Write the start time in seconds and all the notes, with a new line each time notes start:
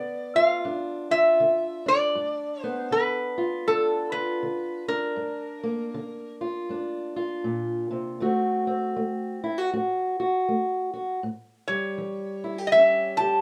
Already playing: D3 B3 D5
0.35 F4 F5
0.64 G2 D4
1.11 F4 E5
1.40 D3
1.86 D4 D5
2.15 G2
2.62 B3 C5
2.91 D3 B4
3.38 F4
3.67 G2 D4 A4
4.12 F4 B4
4.43 D3
4.88 D4 A#4
5.16 G2
5.63 A#3
5.94 D3
6.41 F4
6.69 G2 D4
7.16 F4
7.44 A#2
7.91 C3
8.20 D3 A3 C4 F#4
8.67 C4
8.96 A3
9.44 E4
9.58 F#4
9.73 A2 F#4
10.20 F#4
10.48 A3
10.94 F#4
11.23 A2
11.68 G3 C#5
11.98 E3
12.44 E4
12.58 G4
12.67 D#5
12.72 E2 C#4 E5
13.17 G4 A5